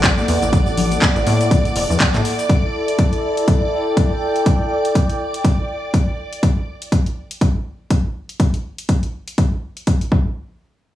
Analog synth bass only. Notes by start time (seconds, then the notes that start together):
Already playing: A1
0.28 E2
0.42 A1
1.16 A1
1.27 A2
1.76 E1
1.90 E2
2.15 A2